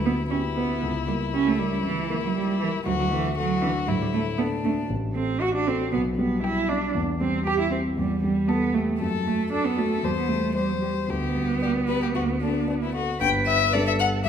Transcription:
Already playing: grand piano D2 B3 G4 B4, violin E4
0.06 cello B3, grand piano B3
0.30 cello C#4, violin E4, grand piano G4
0.56 cello B3, grand piano B4
0.83 grand piano C#2
1.07 cello G3, grand piano A#3
1.34 cello C#4, grand piano G4
1.48 cello A3
1.59 cello G3, grand piano A#4
1.84 grand piano C#3, cello E3
2.10 cello E3, grand piano A#3
2.23 cello F#3
2.35 cello G3, grand piano G4
2.60 cello E3, grand piano A#4
2.86 grand piano D2, cello F#3, violin F#4
2.99 cello F#3
3.11 cello E3, grand piano A3
3.36 cello F#3, violin F#4, grand piano A4
3.62 cello E3, grand piano D4
3.87 grand piano A2, cello F#3, violin E4
4.02 cello G3
4.13 cello A3, grand piano A3
4.38 cello B3, violin D4, grand piano A4
4.65 cello A3, grand piano D4
4.90 grand piano A1
5.15 grand piano A3, cello C4
5.40 grand piano F#4, violin F#4, cello F#4
5.55 cello D4
5.66 cello C4, grand piano A4
5.93 grand piano B1, cello B3
6.18 grand piano G3, cello B3
6.43 cello E4, grand piano G4, violin G4
6.69 cello D4, grand piano D4
6.95 grand piano E2
7.21 grand piano G3, cello C4
7.46 grand piano G4, cello G4, violin G4
7.59 cello E4
7.71 cello C4, grand piano C4
7.97 grand piano E2, cello G3
8.23 cello G3, grand piano G3
8.48 cello B3, violin A4, grand piano A4
8.74 cello A3, grand piano G4
9.00 grand piano F#2, violin A4
9.26 grand piano F#3, cello A3
9.51 cello D4, grand piano A4, violin A4
9.66 cello B3
9.77 cello A3, grand piano F#4
10.03 grand piano E2, cello G3, violin C5
10.17 cello B3
10.29 grand piano G3, cello A3
10.55 cello G3, grand piano C5, violin C5
10.69 cello F#3
10.82 cello G3, grand piano G4
11.08 grand piano D2, cello B3, violin G4
11.35 grand piano G3
11.62 violin G4, grand piano D5
11.88 grand piano G4, violin B4
12.03 violin G4
12.15 grand piano D2, violin F#4
12.41 grand piano A3, violin D4
12.68 violin D4, grand piano D5
12.83 violin E4
12.95 violin F#4, grand piano A4
13.21 grand piano G1 G2, cello B4, violin G5
13.46 violin E5
13.73 grand piano G3 D4 B4, cello A4, violin D5
13.87 violin E5
14.00 violin F#5
14.25 grand piano G1 G2, cello G4, violin E5

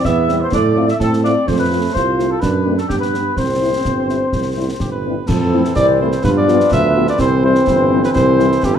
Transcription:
0.04 tuba E2, trombone section B3, cornet E5, woodwind section E5, flute section E5, concert bass drum, snare
0.29 french horn section G3 C4 E4, snare
0.41 cornet C5, flute section C5, woodwind section C5
0.52 tuba A2, trombone section A3, cornet D5, woodwind section D5, flute section D5, concert bass drum, snare
0.76 french horn section A3 C4 F4
0.88 cornet E5, woodwind section E5, flute section E5, snare
0.99 tuba A2, trombone section C4, cornet A4, flute section A4, woodwind section A4, concert bass drum, snare
1.13 snare
1.23 french horn section A3 C4 F4, cornet D5, woodwind section D5, flute section D5, snare
1.47 tuba F2, trombone section A3, woodwind section C5, cornet C5, flute section C5, concert bass drum, snare, crash
1.58 woodwind section B4, flute section B4, cornet B4
1.71 french horn section A3 C4 F4
1.94 tuba C2, trombone section F4, woodwind section C5, flute section C5, cornet C5, concert bass drum, snare
2.18 french horn section A3 C4 F4, snare
2.29 flute section A4, cornet A4, woodwind section A4
2.40 tuba F#2, trombone section D4, woodwind section B4, flute section B4, cornet B4, concert bass drum, snare
2.66 french horn section A3 C4 D4
2.78 flute section A4, woodwind section A4, cornet A4, snare
2.89 tuba G2, trombone section B3, woodwind section G4, flute section G4, cornet G4, concert bass drum, snare
3.00 woodwind section B4, flute section B4, cornet B4, snare
3.14 french horn section G3 D4, snare
3.37 tuba C2, trombone section C4, flute section C5, woodwind section C5, cornet C5, concert bass drum, snare
3.61 french horn section G3 C4 E4
3.85 tuba G1, concert bass drum, snare
4.09 french horn section G3 C4 E4, snare
4.33 tuba C2, concert bass drum, snare
4.57 french horn section G3 C4 E4
4.78 tuba G1, flute section G4, cornet G4, concert bass drum, snare
4.92 cornet B4, flute section B4
5.05 french horn section G3 C4 E4
5.27 tuba F2, trombone section E3 C4, woodwind section E4 C5, cornet A4, flute section A4, concert bass drum, snare, crash
5.40 cornet A4, flute section A4
5.53 french horn section A3 C4 E4
5.65 snare
5.75 tuba C2, cornet D5, flute section D5, concert bass drum, snare
6.01 french horn section A3 C4 E4, cornet C5, flute section C5
6.12 snare
6.23 tuba G2, trombone section F3 B3, woodwind section F4 B4, flute section B4, cornet B4, concert bass drum, snare
6.36 flute section D5, cornet D5
6.48 french horn section G3 B3 F4, snare
6.60 snare
6.70 tuba D2, flute section E5, cornet E5, concert bass drum, snare
6.96 french horn section G3 B3 F4
7.07 flute section D5, cornet D5, snare
7.18 tuba C2, trombone section E3 C4, woodwind section E4 C5, flute section C5, cornet C5, concert bass drum, snare
7.43 french horn section G3 C4 E4, flute section C5, cornet C5
7.55 snare
7.67 tuba G1, concert bass drum, snare
7.91 french horn section G3 C4 E4
8.04 flute section B4, cornet B4, snare
8.15 tuba C2, cornet C5, flute section C5, concert bass drum, snare
8.39 french horn section G3 C4 E4, snare
8.52 snare
8.63 tuba G1, flute section G4, cornet G4, concert bass drum, snare
8.75 flute section B4, cornet B4

